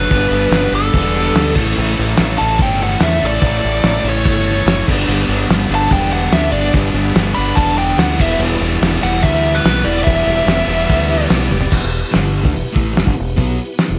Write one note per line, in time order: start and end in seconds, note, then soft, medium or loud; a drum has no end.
0.00 0.10 F#3 medium
0.00 0.11 A3 medium
0.00 0.12 A3 medium
0.00 0.10 D4 medium
0.00 0.11 D4 medium
0.00 0.11 F#4 medium
0.00 0.11 A4 medium
0.00 0.75 B4 loud
0.09 0.29 G1 loud
0.09 0.92 G2 medium
0.09 0.34 G2 medium
0.09 0.92 D3 medium
0.09 0.33 D3 medium
0.09 0.34 G3 loud
0.09 0.93 G3 medium
0.09 0.32 B3 medium
0.09 0.93 B3 loud
0.09 0.32 D4 medium
0.09 kick loud
0.09 crash medium
0.13 1.56 B3 medium
0.13 0.94 D4 loud
0.13 1.56 D4 medium
0.13 0.31 G4 loud
0.13 1.56 G4 medium
0.13 1.56 A4 medium
0.30 0.49 G1 medium
0.30 0.51 B3 medium
0.30 0.52 D4 medium
0.30 0.53 G4 medium
0.35 0.75 G2 medium
0.35 0.74 D3 medium
0.35 0.50 G3 medium
0.51 0.70 G1 medium
0.51 0.75 G3 medium
0.51 0.74 B3 medium
0.51 0.73 D4 medium
0.51 0.72 G4 medium
0.51 snare loud
0.51 crash medium
0.72 0.90 G1 medium
0.72 1.17 G3 medium
0.72 1.16 B3 medium
0.72 1.15 D4 medium
0.72 1.14 G4 medium
0.72 1.53 A4 medium
0.93 1.30 E1 medium
0.93 1.54 G2 medium
0.93 1.55 D3 medium
0.93 1.55 G3 medium
0.93 1.56 B3 medium
0.93 1.56 D4 loud
0.93 kick loud
0.93 crash medium
1.15 1.35 G3 medium
1.15 1.36 B3 medium
1.15 1.37 D4 medium
1.15 1.37 G4 medium
1.34 1.53 D2 medium
1.34 1.55 G3 medium
1.34 1.55 B3 medium
1.34 1.56 D4 medium
1.34 snare loud
1.34 crash medium
1.39 1.55 G4 medium
1.54 1.74 A1 medium
1.54 2.40 A2 medium
1.54 4.85 C#3 medium
1.54 2.40 E3 loud
1.54 1.77 E3 medium
1.54 2.39 A3 medium
1.54 1.77 A3 medium
1.54 4.85 A3 medium
1.54 1.78 C#4 medium
1.54 2.38 C#4 loud
1.54 4.85 E4 medium
1.54 1.78 A4 medium
1.54 kick medium
1.54 crash loud
1.58 1.76 A2 medium
1.58 2.37 E4 loud
1.58 4.85 A4 medium
1.76 1.95 A1 loud
1.76 2.01 A2 medium
1.76 2.00 E3 loud
1.76 2.00 A3 medium
1.76 1.99 C#4 loud
1.76 1.98 A4 loud
1.76 crash medium
1.98 2.16 A1 medium
1.98 3.42 A2 medium
1.98 2.17 E3 medium
1.98 2.18 A3 medium
1.98 2.19 C#4 medium
1.98 2.19 A4 medium
2.17 2.36 A1 loud
2.17 2.59 E3 medium
2.17 2.40 A3 medium
2.17 2.38 C#4 medium
2.17 2.37 A4 medium
2.17 snare loud
2.17 crash medium
2.37 2.58 A1 medium
2.37 3.19 A2 medium
2.37 3.20 E3 medium
2.37 3.21 A3 medium
2.37 2.83 A3 medium
2.37 3.20 C#4 medium
2.37 2.81 C#4 medium
2.37 3.19 E4 medium
2.37 2.79 A4 medium
2.37 2.58 A5 loud
2.59 2.95 G1 loud
2.59 2.82 G5 loud
2.59 kick loud
2.59 crash medium
2.80 3.02 A3 medium
2.80 3.02 C#4 medium
2.80 3.04 A4 medium
2.80 3.03 F#5 medium
3.00 3.19 E2 medium
3.00 3.42 E3 medium
3.00 3.24 A3 medium
3.00 3.22 C#4 medium
3.00 3.23 E5 medium
3.00 snare loud
3.00 crash medium
3.04 3.21 A4 medium
3.20 3.40 A1 medium
3.20 4.02 A2 medium
3.20 4.03 E3 medium
3.20 4.06 A3 loud
3.20 4.03 C#4 loud
3.20 3.44 C#4 medium
3.20 4.03 E4 loud
3.20 3.46 A4 medium
3.24 3.45 A3 medium
3.24 4.08 D5 medium
3.41 3.60 A1 medium
3.41 3.64 A2 medium
3.41 3.64 E3 medium
3.41 3.63 A3 medium
3.41 kick loud
3.41 crash medium
3.46 3.62 C#4 loud
3.46 3.61 A4 loud
3.62 3.82 A1 medium
3.62 4.06 A2 medium
3.62 3.83 E3 medium
3.62 3.84 A3 medium
3.62 3.84 C#4 medium
3.62 3.86 A4 medium
3.83 4.02 A1 medium
3.83 4.25 E3 medium
3.83 4.07 A3 medium
3.83 4.05 C#4 medium
3.83 4.04 A4 medium
3.83 snare loud
3.83 crash medium
4.03 4.22 A1 medium
4.03 4.87 E3 medium
4.03 4.87 A3 medium
4.03 4.86 C#4 medium
4.03 4.47 C#4 medium
4.03 4.86 E4 medium
4.03 4.46 A4 medium
4.08 4.85 A2 medium
4.08 4.48 A3 medium
4.08 4.85 C#5 medium
4.25 4.61 G1 medium
4.25 kick loud
4.25 crash medium
4.47 4.68 A3 medium
4.47 4.67 C#4 medium
4.47 4.69 A4 medium
4.66 4.84 F#1 medium
4.66 4.86 E3 medium
4.66 4.90 A3 medium
4.66 4.87 C#4 medium
4.66 4.88 A4 medium
4.66 snare loud
4.66 crash medium
4.86 5.06 G1 medium
4.86 5.71 G2 medium
4.86 5.69 D3 loud
4.86 5.70 G3 medium
4.86 8.16 B3 medium
4.86 5.69 B3 loud
4.86 8.17 D4 medium
4.86 8.17 G4 medium
4.86 5.10 G4 medium
4.86 8.17 A4 medium
4.86 kick loud
4.86 crash loud
4.90 5.08 G2 medium
4.90 5.08 D3 medium
4.90 5.09 G3 medium
4.90 5.10 B3 medium
4.90 5.11 D4 loud
4.90 5.68 D4 loud
5.08 5.26 G1 loud
5.08 5.31 G2 medium
5.08 5.30 D3 medium
5.08 5.30 G3 loud
5.08 5.29 B3 medium
5.08 5.29 D4 loud
5.08 5.28 G4 medium
5.08 crash medium
5.29 5.47 G1 medium
5.29 6.74 G2 medium
5.29 5.72 D3 medium
5.29 5.50 G3 medium
5.29 5.51 B3 medium
5.29 5.52 D4 medium
5.29 5.53 G4 medium
5.50 5.68 G1 medium
5.50 5.72 G3 medium
5.50 5.72 B3 medium
5.50 5.70 D4 medium
5.50 5.69 G4 medium
5.50 snare loud
5.50 crash medium
5.69 5.88 G1 medium
5.69 6.50 G2 medium
5.69 6.51 D3 medium
5.69 6.53 G3 medium
5.69 6.15 G3 medium
5.69 6.54 B3 medium
5.69 6.14 B3 medium
5.69 6.51 D4 medium
5.69 6.11 D4 medium
5.69 6.11 G4 medium
5.75 5.92 A5 loud
5.91 6.27 E1 medium
5.91 6.12 G5 loud
5.91 kick loud
5.91 crash medium
6.12 6.32 G3 medium
6.12 6.33 B3 medium
6.12 6.33 D4 medium
6.12 6.35 G4 medium
6.12 6.31 F#5 medium
6.32 6.50 D2 medium
6.32 6.55 G3 medium
6.32 6.54 B3 medium
6.32 6.53 D4 medium
6.32 6.53 G4 medium
6.32 6.52 E5 medium
6.32 snare loud
6.32 crash medium
6.51 6.71 G1 medium
6.51 7.34 G2 medium
6.51 7.34 D3 loud
6.51 7.37 G3 medium
6.51 7.35 B3 loud
6.51 6.76 B3 medium
6.51 6.75 D4 medium
6.51 7.33 D4 loud
6.51 6.76 G4 medium
6.51 6.72 D5 medium
6.55 6.75 G3 medium
6.74 6.92 G1 loud
6.74 6.95 G2 medium
6.74 6.94 D3 loud
6.74 6.95 G3 loud
6.74 6.95 B3 loud
6.74 6.93 D4 loud
6.74 6.92 G4 loud
6.74 kick loud
6.74 crash medium
6.93 7.12 G1 medium
6.93 7.37 G2 medium
6.93 7.37 D3 medium
6.93 7.14 G3 medium
6.93 7.14 B3 medium
6.93 7.15 D4 medium
6.93 7.16 G4 medium
7.14 7.34 G1 medium
7.14 7.38 G3 medium
7.14 7.37 B3 medium
7.14 7.35 D4 medium
7.14 7.35 G4 medium
7.14 snare loud
7.14 crash medium
7.35 7.55 G1 medium
7.35 8.19 G2 medium
7.35 8.15 D3 medium
7.35 8.18 G3 medium
7.35 7.79 G3 medium
7.35 8.18 B3 medium
7.35 7.78 B3 medium
7.35 8.17 D4 medium
7.35 7.77 D4 medium
7.35 7.76 G4 medium
7.35 7.57 B5 loud
7.55 7.93 E1 medium
7.55 7.78 A5 loud
7.55 kick loud
7.55 crash medium
7.76 7.98 G3 medium
7.76 7.99 B3 medium
7.76 7.99 D4 medium
7.76 8.01 G4 medium
7.76 7.99 G5 medium
7.97 8.16 D2 medium
7.97 8.19 G3 medium
7.97 8.19 B3 medium
7.97 8.19 D4 medium
7.97 8.18 G4 medium
7.97 8.20 F#5 medium
7.97 snare loud
7.97 crash medium
8.16 9.05 E3 medium
8.16 8.40 E3 medium
8.16 9.04 G3 medium
8.16 8.40 G3 medium
8.16 9.02 B3 loud
8.16 8.40 B3 medium
8.16 9.01 E4 loud
8.16 8.42 G4 medium
8.16 11.69 B4 medium
8.16 kick loud
8.20 8.38 E1 medium
8.20 8.38 E2 medium
8.20 8.38 B2 medium
8.20 11.69 B3 medium
8.20 11.70 E4 medium
8.20 11.69 G4 medium
8.20 8.39 E5 medium
8.20 crash loud
8.38 8.58 E1 loud
8.38 8.62 E2 medium
8.38 8.61 B2 loud
8.38 8.61 E3 medium
8.38 8.60 G3 loud
8.38 8.60 B3 loud
8.38 8.59 G4 loud
8.38 crash medium
8.60 8.79 E1 medium
8.60 10.03 E2 medium
8.60 9.03 B2 medium
8.60 8.80 E3 medium
8.60 8.81 G3 medium
8.60 8.81 B3 medium
8.60 8.83 G4 medium
8.80 9.00 E1 loud
8.80 9.04 E3 medium
8.80 9.03 G3 medium
8.80 9.03 B3 medium
8.80 9.01 G4 medium
8.80 snare loud
8.80 crash medium
9.01 9.21 E1 medium
9.01 9.46 E3 medium
9.01 9.45 G3 medium
9.01 9.86 G3 medium
9.01 9.88 B3 medium
9.01 9.44 B3 medium
9.01 9.88 E4 medium
9.01 9.43 G4 medium
9.01 9.24 F#5 loud
9.05 9.84 E3 medium
9.23 9.60 D2 loud
9.23 9.55 E5 loud
9.23 kick loud
9.23 crash medium
9.44 9.63 E3 medium
9.44 9.65 G3 medium
9.44 9.66 B3 medium
9.44 9.66 G4 medium
9.55 9.87 B4 medium
9.64 9.83 B1 medium
9.64 9.88 E3 medium
9.64 9.87 G3 medium
9.64 9.86 B3 medium
9.64 9.85 G4 medium
9.64 snare loud
9.64 crash medium
9.84 10.03 E1 medium
9.84 10.67 E3 medium
9.84 10.67 G3 loud
9.84 10.05 G3 medium
9.84 10.05 B3 medium
9.84 10.68 B3 loud
9.84 10.06 G4 medium
9.84 10.04 D5 loud
9.88 10.05 E3 medium
9.88 10.68 E4 loud
10.04 10.25 E1 medium
10.04 10.28 E2 medium
10.04 10.28 B2 medium
10.04 10.28 E3 medium
10.04 10.27 G3 loud
10.04 10.26 B3 loud
10.04 10.25 G4 loud
10.04 11.26 E5 loud
10.04 kick loud
10.04 crash medium
10.26 10.45 E1 medium
10.26 10.70 E2 medium
10.26 10.70 B2 medium
10.26 10.47 E3 medium
10.26 10.48 G3 medium
10.26 10.49 B3 medium
10.26 10.49 G4 medium
10.46 10.65 E1 medium
10.46 10.71 E3 medium
10.46 10.70 G3 medium
10.46 10.69 B3 medium
10.46 snare loud
10.46 crash medium
10.51 10.68 G4 medium
10.67 10.85 E1 medium
10.67 11.10 B3 medium
10.67 11.51 B3 medium
10.67 11.51 E4 medium
10.67 11.09 G4 medium
10.71 11.11 E3 medium
10.71 11.53 E3 medium
10.71 11.11 G3 medium
10.71 11.52 G3 medium
10.89 11.26 D2 loud
10.89 kick loud
10.89 crash medium
11.10 11.30 E3 medium
11.10 11.31 G3 medium
11.10 11.32 B3 medium
11.10 11.33 G4 medium
11.30 11.48 B1 medium
11.30 11.53 E3 medium
11.30 11.53 G3 medium
11.30 11.52 B3 medium
11.30 snare loud
11.30 crash medium
11.34 11.51 G4 medium
11.51 11.70 E1 medium
11.51 11.73 E3 medium
11.51 11.72 G3 medium
11.51 11.72 B3 medium
11.51 11.71 G4 medium
11.51 high tom medium
11.61 floor tom medium
11.72 11.82 E1 medium
11.72 11.81 E2 medium
11.72 11.80 B2 medium
11.72 13.99 B3 medium
11.72 13.99 E4 medium
11.72 13.99 G4 medium
11.72 13.99 B4 medium
11.72 kick loud
11.72 crash loud
11.82 12.03 E1 medium
11.82 11.99 E2 medium
11.82 11.99 B2 medium
12.11 12.43 G2 medium
12.11 12.40 D3 loud
12.11 12.43 G3 loud
12.11 snare loud
12.11 open hi-hat medium
12.16 12.44 G1 loud
12.42 12.55 D2 medium
12.42 12.53 D3 medium
12.42 12.54 A3 medium
12.42 kick loud
12.54 12.66 E1 medium
12.54 12.64 E2 medium
12.54 12.65 B2 medium
12.54 open hi-hat medium
12.65 muted overdriven electric guitar stroke medium
12.65 muted fingered electric bass stroke soft
12.73 12.95 A1 medium
12.73 12.93 A2 medium
12.73 12.95 E3 medium
12.73 12.95 A3 loud
12.73 kick loud
12.94 13.07 E1 medium
12.94 13.03 E2 medium
12.94 13.05 B2 medium
12.94 snare loud
12.94 open hi-hat medium
13.04 13.17 G1 medium
13.04 13.15 G2 medium
13.04 13.16 D3 medium
13.04 kick loud
13.16 13.37 E1 medium
13.16 13.34 E2 medium
13.16 13.34 B2 medium
13.36 13.58 B1 medium
13.36 13.58 B2 loud
13.36 13.58 F#3 medium
13.36 13.58 B3 loud
13.36 kick loud
13.36 open hi-hat medium
13.78 snare loud
13.78 open hi-hat medium
13.88 13.99 E1 medium
13.88 13.99 E2 medium
13.88 13.99 B2 medium